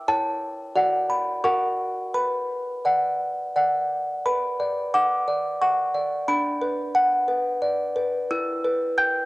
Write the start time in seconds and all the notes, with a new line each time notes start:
0.08 E4 C#5 G5 A5
0.75 F#4 D5 F#5
1.10 B5
1.44 F#4 A#4 F#5 C#6
2.14 B4 B5
2.85 D5 F#5
3.56 D5 F#5
4.26 B4 B5
4.60 D5
4.94 F#5 D6
5.28 D5
5.62 F#5 C#6
5.95 D5
6.28 D4 B5
6.61 B4
6.95 F#5
7.28 B4
7.62 D5
7.96 B4
8.31 E4 E6
8.64 B4
8.98 G5 G6